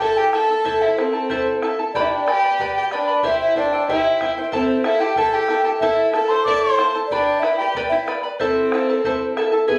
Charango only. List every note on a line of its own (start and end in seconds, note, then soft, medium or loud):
0.01 0.33 E4 medium
0.01 0.33 A4 medium
0.01 0.33 C5 medium
0.01 0.33 E5 medium
0.01 0.33 A5 medium
0.34 0.50 E4 medium
0.34 0.48 A4 medium
0.34 0.49 E5 medium
0.34 0.47 A5 medium
0.49 0.64 E4 soft
0.49 0.64 A4 soft
0.49 0.65 A5 medium
0.65 0.97 E4 medium
0.65 0.97 A4 medium
0.65 0.97 C5 medium
0.65 0.96 E5 medium
0.65 0.98 A5 medium
0.97 1.13 E4 medium
0.97 1.12 A4 medium
0.97 1.13 E5 medium
0.97 1.12 A5 medium
1.13 1.29 E4 soft
1.13 1.30 A4 soft
1.13 1.29 A5 soft
1.30 1.62 E4 medium
1.30 1.63 A4 medium
1.30 1.62 C5 medium
1.30 1.61 E5 medium
1.30 1.63 A5 medium
1.63 1.79 E4 medium
1.63 1.78 A4 medium
1.63 1.78 E5 medium
1.63 1.78 A5 medium
1.79 1.95 E4 soft
1.79 1.95 A4 soft
1.79 1.95 A5 soft
1.95 2.27 G4 medium
1.95 2.26 B4 medium
1.95 2.26 D5 medium
1.95 2.25 G5 medium
1.95 2.27 B5 medium
2.26 2.43 B4 medium
2.26 2.43 D5 medium
2.26 2.42 G5 medium
2.26 2.42 B5 medium
2.43 2.59 B4 soft
2.43 2.60 D5 soft
2.43 2.59 B5 medium
2.60 2.92 G4 medium
2.60 2.91 B4 medium
2.60 2.92 D5 medium
2.60 2.90 G5 medium
2.60 2.92 B5 medium
2.91 3.08 B4 medium
2.91 3.07 D5 medium
2.91 3.07 G5 medium
2.91 3.06 B5 medium
3.08 3.24 B4 soft
3.08 3.24 D5 soft
3.08 3.24 B5 medium
3.23 3.56 E4 medium
3.23 3.56 G4 medium
3.23 3.56 C5 medium
3.23 3.55 E5 medium
3.23 3.56 G5 medium
3.56 3.72 E4 medium
3.56 3.72 C5 medium
3.56 3.72 E5 medium
3.56 3.71 G5 medium
3.73 3.88 E4 soft
3.73 3.89 C5 medium
3.73 3.88 G5 soft
3.89 4.21 E4 medium
3.89 4.21 G4 medium
3.89 4.21 C5 medium
3.89 4.20 E5 medium
3.89 4.21 G5 medium
4.21 4.37 E4 medium
4.21 4.37 C5 medium
4.21 4.37 E5 medium
4.21 4.37 G5 medium
4.38 4.52 E4 soft
4.38 4.51 C5 soft
4.38 4.53 G5 medium
4.52 4.84 E4 medium
4.52 4.84 A4 medium
4.52 4.84 C5 medium
4.52 4.83 E5 medium
4.52 4.84 A5 medium
4.84 5.00 E4 medium
4.84 5.00 A4 medium
4.84 5.01 E5 medium
4.84 5.00 A5 medium
5.01 5.16 E4 soft
5.01 5.17 A4 soft
5.01 5.17 A5 medium
5.17 5.49 E4 medium
5.17 5.49 A4 medium
5.17 5.49 C5 medium
5.17 5.48 E5 medium
5.17 5.49 A5 medium
5.49 5.65 E4 medium
5.49 5.64 A4 medium
5.49 5.65 E5 medium
5.49 5.63 A5 medium
5.65 5.81 E4 soft
5.65 5.82 A4 soft
5.65 5.81 A5 medium
5.82 6.13 E4 medium
5.82 6.14 A4 medium
5.82 6.14 C5 medium
5.82 6.12 E5 medium
5.82 6.14 A5 medium
6.14 6.30 E4 medium
6.14 6.29 A4 medium
6.14 6.30 E5 medium
6.14 6.28 A5 medium
6.29 6.46 E4 soft
6.29 6.46 A4 soft
6.29 6.46 A5 medium
6.47 6.78 E4 medium
6.47 6.78 A4 medium
6.47 6.79 C5 medium
6.47 6.77 E5 medium
6.47 6.79 A5 medium
6.78 6.95 E4 medium
6.78 6.94 A4 medium
6.78 6.95 E5 medium
6.78 6.93 A5 medium
6.95 7.11 E4 soft
6.95 7.11 A4 soft
6.95 7.11 A5 soft
7.11 7.43 G4 medium
7.11 7.42 B4 medium
7.11 7.43 D5 medium
7.11 7.42 G5 medium
7.11 7.43 B5 medium
7.43 7.60 B4 medium
7.43 7.60 D5 medium
7.43 7.59 G5 medium
7.43 7.59 B5 medium
7.60 7.75 B4 soft
7.60 7.75 D5 soft
7.60 7.76 B5 medium
7.76 8.08 G4 medium
7.76 8.06 B4 medium
7.76 8.07 D5 medium
7.76 8.06 G5 medium
7.76 8.07 B5 medium
8.07 8.23 B4 medium
8.07 8.22 D5 medium
8.07 8.23 G5 medium
8.07 8.22 B5 medium
8.23 8.40 B4 soft
8.23 8.40 D5 soft
8.23 8.40 B5 medium
8.40 8.72 E4 medium
8.40 8.72 A4 medium
8.40 8.72 C5 medium
8.40 8.72 E5 medium
8.40 8.73 A5 medium
8.74 8.89 E4 medium
8.74 8.89 A4 medium
8.74 8.89 E5 medium
8.74 8.88 A5 medium
8.89 9.04 E4 soft
8.89 9.04 A4 soft
8.89 9.05 A5 medium
9.05 9.37 E4 medium
9.05 9.37 A4 medium
9.05 9.37 C5 medium
9.05 9.36 E5 medium
9.05 9.38 A5 medium
9.37 9.52 E4 medium
9.37 9.52 A4 medium
9.37 9.53 E5 medium
9.37 9.51 A5 medium
9.52 9.67 E4 soft
9.52 9.68 A4 medium
9.52 9.68 A5 medium
9.68 9.79 E4 medium
9.68 9.79 G#4 medium
9.68 9.79 B4 medium
9.68 9.79 E5 medium
9.68 9.79 G#5 medium